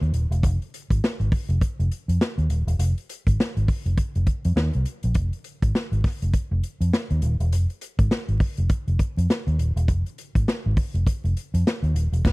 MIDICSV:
0, 0, Header, 1, 3, 480
1, 0, Start_track
1, 0, Tempo, 590551
1, 354, Time_signature, 4, 2, 24, 8
1, 10019, End_track
2, 0, Start_track
2, 0, Title_t, "Fingered electric bass"
2, 0, Program_c, 0, 33
2, 11, Note_on_c, 0, 39, 90
2, 84, Note_off_c, 0, 39, 0
2, 102, Note_on_c, 0, 27, 92
2, 212, Note_off_c, 0, 27, 0
2, 248, Note_on_c, 0, 28, 97
2, 354, Note_off_c, 0, 28, 0
2, 354, Note_on_c, 0, 29, 119
2, 459, Note_off_c, 0, 29, 0
2, 734, Note_on_c, 0, 32, 83
2, 806, Note_off_c, 0, 32, 0
2, 973, Note_on_c, 0, 32, 77
2, 1045, Note_off_c, 0, 32, 0
2, 1210, Note_on_c, 0, 29, 98
2, 1283, Note_off_c, 0, 29, 0
2, 1459, Note_on_c, 0, 29, 90
2, 1529, Note_off_c, 0, 29, 0
2, 1693, Note_on_c, 0, 41, 84
2, 1765, Note_off_c, 0, 41, 0
2, 1933, Note_on_c, 0, 39, 93
2, 2005, Note_off_c, 0, 39, 0
2, 2029, Note_on_c, 0, 27, 94
2, 2136, Note_off_c, 0, 27, 0
2, 2170, Note_on_c, 0, 28, 95
2, 2243, Note_off_c, 0, 28, 0
2, 2268, Note_on_c, 0, 29, 99
2, 2375, Note_off_c, 0, 29, 0
2, 2657, Note_on_c, 0, 32, 71
2, 2728, Note_off_c, 0, 32, 0
2, 2899, Note_on_c, 0, 32, 77
2, 2969, Note_off_c, 0, 32, 0
2, 3134, Note_on_c, 0, 29, 85
2, 3206, Note_off_c, 0, 29, 0
2, 3379, Note_on_c, 0, 29, 88
2, 3449, Note_off_c, 0, 29, 0
2, 3619, Note_on_c, 0, 41, 93
2, 3689, Note_off_c, 0, 41, 0
2, 3706, Note_on_c, 0, 39, 95
2, 3815, Note_off_c, 0, 39, 0
2, 3861, Note_on_c, 0, 36, 94
2, 3930, Note_off_c, 0, 36, 0
2, 4095, Note_on_c, 0, 34, 87
2, 4167, Note_off_c, 0, 34, 0
2, 4187, Note_on_c, 0, 29, 106
2, 4295, Note_off_c, 0, 29, 0
2, 4570, Note_on_c, 0, 32, 84
2, 4643, Note_off_c, 0, 32, 0
2, 4810, Note_on_c, 0, 32, 88
2, 4883, Note_off_c, 0, 32, 0
2, 5058, Note_on_c, 0, 29, 93
2, 5128, Note_off_c, 0, 29, 0
2, 5294, Note_on_c, 0, 29, 102
2, 5365, Note_off_c, 0, 29, 0
2, 5531, Note_on_c, 0, 41, 82
2, 5604, Note_off_c, 0, 41, 0
2, 5775, Note_on_c, 0, 39, 97
2, 5846, Note_off_c, 0, 39, 0
2, 5872, Note_on_c, 0, 27, 103
2, 5978, Note_off_c, 0, 27, 0
2, 6014, Note_on_c, 0, 28, 103
2, 6114, Note_off_c, 0, 28, 0
2, 6114, Note_on_c, 0, 29, 106
2, 6219, Note_off_c, 0, 29, 0
2, 6494, Note_on_c, 0, 32, 94
2, 6565, Note_off_c, 0, 32, 0
2, 6734, Note_on_c, 0, 32, 81
2, 6805, Note_off_c, 0, 32, 0
2, 6974, Note_on_c, 0, 29, 94
2, 7046, Note_off_c, 0, 29, 0
2, 7214, Note_on_c, 0, 29, 94
2, 7286, Note_off_c, 0, 29, 0
2, 7456, Note_on_c, 0, 41, 92
2, 7527, Note_off_c, 0, 41, 0
2, 7696, Note_on_c, 0, 39, 90
2, 7767, Note_off_c, 0, 39, 0
2, 7790, Note_on_c, 0, 27, 85
2, 7897, Note_off_c, 0, 27, 0
2, 7933, Note_on_c, 0, 28, 99
2, 8033, Note_off_c, 0, 28, 0
2, 8033, Note_on_c, 0, 29, 107
2, 8139, Note_off_c, 0, 29, 0
2, 8415, Note_on_c, 0, 32, 81
2, 8486, Note_off_c, 0, 32, 0
2, 8663, Note_on_c, 0, 32, 90
2, 8732, Note_off_c, 0, 32, 0
2, 8893, Note_on_c, 0, 29, 95
2, 8966, Note_off_c, 0, 29, 0
2, 9138, Note_on_c, 0, 29, 92
2, 9208, Note_off_c, 0, 29, 0
2, 9379, Note_on_c, 0, 41, 93
2, 9449, Note_off_c, 0, 41, 0
2, 9612, Note_on_c, 0, 39, 95
2, 9685, Note_off_c, 0, 39, 0
2, 9706, Note_on_c, 0, 27, 93
2, 9815, Note_off_c, 0, 27, 0
2, 9853, Note_on_c, 0, 28, 96
2, 9952, Note_off_c, 0, 28, 0
2, 9958, Note_on_c, 0, 29, 106
2, 10019, Note_off_c, 0, 29, 0
2, 10019, End_track
3, 0, Start_track
3, 0, Title_t, "Drums"
3, 20, Note_on_c, 9, 42, 30
3, 102, Note_off_c, 9, 42, 0
3, 111, Note_on_c, 9, 42, 68
3, 192, Note_off_c, 9, 42, 0
3, 261, Note_on_c, 9, 42, 53
3, 342, Note_off_c, 9, 42, 0
3, 352, Note_on_c, 9, 36, 101
3, 357, Note_on_c, 9, 42, 94
3, 433, Note_off_c, 9, 36, 0
3, 438, Note_off_c, 9, 42, 0
3, 503, Note_on_c, 9, 42, 33
3, 584, Note_off_c, 9, 42, 0
3, 602, Note_on_c, 9, 42, 82
3, 683, Note_off_c, 9, 42, 0
3, 736, Note_on_c, 9, 36, 87
3, 743, Note_on_c, 9, 42, 55
3, 817, Note_off_c, 9, 36, 0
3, 824, Note_off_c, 9, 42, 0
3, 845, Note_on_c, 9, 38, 111
3, 926, Note_off_c, 9, 38, 0
3, 980, Note_on_c, 9, 42, 29
3, 1061, Note_off_c, 9, 42, 0
3, 1072, Note_on_c, 9, 36, 105
3, 1078, Note_on_c, 9, 46, 78
3, 1154, Note_off_c, 9, 36, 0
3, 1159, Note_off_c, 9, 46, 0
3, 1218, Note_on_c, 9, 42, 52
3, 1299, Note_off_c, 9, 42, 0
3, 1312, Note_on_c, 9, 36, 96
3, 1315, Note_on_c, 9, 42, 77
3, 1393, Note_off_c, 9, 36, 0
3, 1396, Note_off_c, 9, 42, 0
3, 1463, Note_on_c, 9, 42, 35
3, 1544, Note_off_c, 9, 42, 0
3, 1557, Note_on_c, 9, 42, 68
3, 1638, Note_off_c, 9, 42, 0
3, 1702, Note_on_c, 9, 42, 59
3, 1783, Note_off_c, 9, 42, 0
3, 1798, Note_on_c, 9, 38, 115
3, 1880, Note_off_c, 9, 38, 0
3, 1939, Note_on_c, 9, 42, 27
3, 2020, Note_off_c, 9, 42, 0
3, 2032, Note_on_c, 9, 42, 79
3, 2113, Note_off_c, 9, 42, 0
3, 2179, Note_on_c, 9, 42, 58
3, 2260, Note_off_c, 9, 42, 0
3, 2272, Note_on_c, 9, 42, 99
3, 2353, Note_off_c, 9, 42, 0
3, 2420, Note_on_c, 9, 42, 37
3, 2501, Note_off_c, 9, 42, 0
3, 2516, Note_on_c, 9, 42, 78
3, 2597, Note_off_c, 9, 42, 0
3, 2656, Note_on_c, 9, 36, 82
3, 2664, Note_on_c, 9, 42, 58
3, 2737, Note_off_c, 9, 36, 0
3, 2745, Note_off_c, 9, 42, 0
3, 2765, Note_on_c, 9, 38, 108
3, 2846, Note_off_c, 9, 38, 0
3, 2900, Note_on_c, 9, 42, 31
3, 2982, Note_off_c, 9, 42, 0
3, 2993, Note_on_c, 9, 36, 104
3, 2998, Note_on_c, 9, 46, 78
3, 3074, Note_off_c, 9, 36, 0
3, 3080, Note_off_c, 9, 46, 0
3, 3138, Note_on_c, 9, 42, 57
3, 3220, Note_off_c, 9, 42, 0
3, 3231, Note_on_c, 9, 36, 99
3, 3231, Note_on_c, 9, 42, 83
3, 3312, Note_off_c, 9, 36, 0
3, 3313, Note_off_c, 9, 42, 0
3, 3376, Note_on_c, 9, 42, 34
3, 3457, Note_off_c, 9, 42, 0
3, 3469, Note_on_c, 9, 36, 85
3, 3469, Note_on_c, 9, 42, 62
3, 3550, Note_off_c, 9, 36, 0
3, 3550, Note_off_c, 9, 42, 0
3, 3614, Note_on_c, 9, 42, 63
3, 3696, Note_off_c, 9, 42, 0
3, 3714, Note_on_c, 9, 38, 119
3, 3795, Note_off_c, 9, 38, 0
3, 3848, Note_on_c, 9, 42, 29
3, 3930, Note_off_c, 9, 42, 0
3, 3947, Note_on_c, 9, 42, 81
3, 4028, Note_off_c, 9, 42, 0
3, 4087, Note_on_c, 9, 42, 51
3, 4169, Note_off_c, 9, 42, 0
3, 4182, Note_on_c, 9, 42, 93
3, 4188, Note_on_c, 9, 36, 109
3, 4263, Note_off_c, 9, 42, 0
3, 4269, Note_off_c, 9, 36, 0
3, 4331, Note_on_c, 9, 42, 36
3, 4413, Note_off_c, 9, 42, 0
3, 4424, Note_on_c, 9, 42, 78
3, 4506, Note_off_c, 9, 42, 0
3, 4571, Note_on_c, 9, 36, 94
3, 4573, Note_on_c, 9, 42, 63
3, 4653, Note_off_c, 9, 36, 0
3, 4655, Note_off_c, 9, 42, 0
3, 4675, Note_on_c, 9, 38, 103
3, 4756, Note_off_c, 9, 38, 0
3, 4817, Note_on_c, 9, 42, 32
3, 4899, Note_off_c, 9, 42, 0
3, 4911, Note_on_c, 9, 36, 102
3, 4914, Note_on_c, 9, 46, 76
3, 4920, Note_on_c, 9, 38, 41
3, 4992, Note_off_c, 9, 36, 0
3, 4996, Note_off_c, 9, 46, 0
3, 5002, Note_off_c, 9, 38, 0
3, 5056, Note_on_c, 9, 42, 54
3, 5137, Note_off_c, 9, 42, 0
3, 5149, Note_on_c, 9, 42, 72
3, 5150, Note_on_c, 9, 36, 86
3, 5231, Note_off_c, 9, 36, 0
3, 5231, Note_off_c, 9, 42, 0
3, 5393, Note_on_c, 9, 42, 65
3, 5474, Note_off_c, 9, 42, 0
3, 5538, Note_on_c, 9, 42, 58
3, 5620, Note_off_c, 9, 42, 0
3, 5636, Note_on_c, 9, 38, 113
3, 5717, Note_off_c, 9, 38, 0
3, 5774, Note_on_c, 9, 42, 34
3, 5855, Note_off_c, 9, 42, 0
3, 5867, Note_on_c, 9, 42, 69
3, 5948, Note_off_c, 9, 42, 0
3, 6017, Note_on_c, 9, 42, 51
3, 6099, Note_off_c, 9, 42, 0
3, 6116, Note_on_c, 9, 42, 86
3, 6197, Note_off_c, 9, 42, 0
3, 6258, Note_on_c, 9, 42, 34
3, 6339, Note_off_c, 9, 42, 0
3, 6351, Note_on_c, 9, 42, 76
3, 6432, Note_off_c, 9, 42, 0
3, 6493, Note_on_c, 9, 36, 89
3, 6495, Note_on_c, 9, 42, 53
3, 6574, Note_off_c, 9, 36, 0
3, 6576, Note_off_c, 9, 42, 0
3, 6593, Note_on_c, 9, 38, 103
3, 6674, Note_off_c, 9, 38, 0
3, 6733, Note_on_c, 9, 42, 29
3, 6814, Note_off_c, 9, 42, 0
3, 6829, Note_on_c, 9, 36, 99
3, 6830, Note_on_c, 9, 46, 75
3, 6910, Note_off_c, 9, 36, 0
3, 6912, Note_off_c, 9, 46, 0
3, 6968, Note_on_c, 9, 42, 56
3, 7050, Note_off_c, 9, 42, 0
3, 7067, Note_on_c, 9, 42, 77
3, 7069, Note_on_c, 9, 36, 104
3, 7148, Note_off_c, 9, 42, 0
3, 7150, Note_off_c, 9, 36, 0
3, 7215, Note_on_c, 9, 42, 32
3, 7296, Note_off_c, 9, 42, 0
3, 7309, Note_on_c, 9, 36, 91
3, 7310, Note_on_c, 9, 42, 60
3, 7391, Note_off_c, 9, 36, 0
3, 7391, Note_off_c, 9, 42, 0
3, 7464, Note_on_c, 9, 42, 56
3, 7546, Note_off_c, 9, 42, 0
3, 7560, Note_on_c, 9, 38, 122
3, 7641, Note_off_c, 9, 38, 0
3, 7700, Note_on_c, 9, 42, 30
3, 7781, Note_off_c, 9, 42, 0
3, 7797, Note_on_c, 9, 42, 76
3, 7878, Note_off_c, 9, 42, 0
3, 7943, Note_on_c, 9, 42, 56
3, 8024, Note_off_c, 9, 42, 0
3, 8033, Note_on_c, 9, 36, 116
3, 8036, Note_on_c, 9, 42, 90
3, 8115, Note_off_c, 9, 36, 0
3, 8117, Note_off_c, 9, 42, 0
3, 8179, Note_on_c, 9, 42, 38
3, 8260, Note_off_c, 9, 42, 0
3, 8276, Note_on_c, 9, 42, 78
3, 8358, Note_off_c, 9, 42, 0
3, 8415, Note_on_c, 9, 36, 95
3, 8419, Note_on_c, 9, 42, 63
3, 8496, Note_off_c, 9, 36, 0
3, 8501, Note_off_c, 9, 42, 0
3, 8519, Note_on_c, 9, 38, 103
3, 8601, Note_off_c, 9, 38, 0
3, 8753, Note_on_c, 9, 36, 97
3, 8756, Note_on_c, 9, 46, 68
3, 8834, Note_off_c, 9, 36, 0
3, 8837, Note_off_c, 9, 46, 0
3, 8901, Note_on_c, 9, 42, 52
3, 8982, Note_off_c, 9, 42, 0
3, 8994, Note_on_c, 9, 36, 96
3, 8998, Note_on_c, 9, 42, 82
3, 9075, Note_off_c, 9, 36, 0
3, 9079, Note_off_c, 9, 42, 0
3, 9145, Note_on_c, 9, 42, 36
3, 9226, Note_off_c, 9, 42, 0
3, 9240, Note_on_c, 9, 42, 67
3, 9321, Note_off_c, 9, 42, 0
3, 9384, Note_on_c, 9, 42, 63
3, 9465, Note_off_c, 9, 42, 0
3, 9487, Note_on_c, 9, 38, 113
3, 9568, Note_off_c, 9, 38, 0
3, 9621, Note_on_c, 9, 42, 31
3, 9702, Note_off_c, 9, 42, 0
3, 9721, Note_on_c, 9, 42, 82
3, 9802, Note_off_c, 9, 42, 0
3, 9862, Note_on_c, 9, 42, 51
3, 9944, Note_off_c, 9, 42, 0
3, 9955, Note_on_c, 9, 36, 119
3, 9958, Note_on_c, 9, 49, 76
3, 9966, Note_on_c, 9, 38, 115
3, 10019, Note_off_c, 9, 36, 0
3, 10019, Note_off_c, 9, 38, 0
3, 10019, Note_off_c, 9, 49, 0
3, 10019, End_track
0, 0, End_of_file